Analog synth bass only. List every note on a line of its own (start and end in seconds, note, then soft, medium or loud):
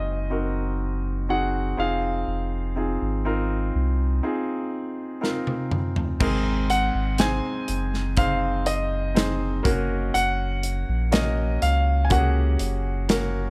0.00 1.74 F#1 medium
1.79 2.24 F1 medium
2.28 2.97 F1 medium
3.02 3.71 G#1 medium
3.75 4.21 C2 medium
6.21 6.91 G#1 medium
6.95 7.41 G#1 loud
7.69 9.61 F#1 medium
9.65 10.11 F#1 medium
10.15 10.84 F#1 medium
10.89 11.58 A#1 medium
11.63 12.57 C#2 medium
12.60 13.50 F#1 medium